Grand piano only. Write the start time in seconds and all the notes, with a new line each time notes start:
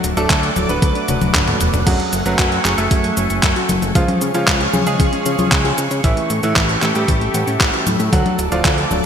0.17 A3 A4
0.69 B3 B4
1.87 F#3 F#4
2.26 F#3 F#4
2.78 A3 A4
3.95 F3 F4
4.34 F3 F4
4.87 G#3 G#4
6.04 E3 E4
6.43 E3 E4
6.95 G3 G4
8.13 F#3 F#4
8.52 F3 F4